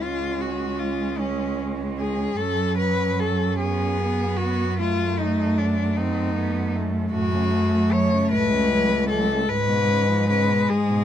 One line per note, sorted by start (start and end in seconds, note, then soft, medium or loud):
0.01 2.37 C#2 soft
0.01 2.42 G#3 soft
0.01 1.21 C#4 soft
0.01 0.42 F4 medium
0.41 0.81 F#4 soft
0.79 1.20 F4 soft
1.19 1.60 C#4 soft
1.19 2.39 C#4 soft
1.99 2.39 G#4 soft
2.37 3.60 F#3 soft
2.37 4.01 C#4 soft
2.37 2.77 A4 medium
2.42 7.11 F#2 soft
2.78 3.21 B4 medium
3.20 3.59 A4 soft
3.59 4.81 B3 soft
3.59 4.38 G#4 medium
3.99 4.80 B3 soft
4.37 4.78 F#4 medium
4.79 5.97 A3 soft
4.79 5.99 A3 soft
4.79 5.20 F4 medium
5.19 5.60 D#4 medium
5.58 5.98 D4 soft
5.96 7.13 A3 soft
5.96 6.36 C4 soft
5.96 6.75 D#4 medium
6.37 6.77 B3 soft
6.75 9.53 A3 medium
7.13 8.13 F#2 medium
7.13 7.36 A2 soft
7.13 7.94 F#4 medium
7.34 7.54 C#3 soft
7.53 7.75 F#3 soft
7.74 7.93 A3 soft
7.92 8.14 F#3 soft
7.92 8.31 C#5 medium
8.12 8.34 C#3 soft
8.32 9.31 C#2 medium
8.32 8.53 A2 soft
8.32 9.09 B4 medium
8.52 8.72 C#3 soft
8.71 8.94 F#3 soft
8.92 9.12 A3 soft
9.09 9.32 F#3 soft
9.09 9.51 A4 medium
9.31 9.50 C#3 soft
9.50 9.69 G#2 soft
9.50 10.49 G#2 medium
9.50 11.04 G#3 medium
9.50 10.29 B4 medium
9.67 9.91 B2 soft
9.90 10.10 C#3 soft
10.08 10.31 F3 soft
10.30 10.51 C#3 soft
10.30 10.71 B4 medium
10.50 10.72 B2 soft
10.69 11.04 G#2 medium
10.69 10.92 G#2 soft
10.69 11.04 G#4 medium
10.90 11.04 B2 soft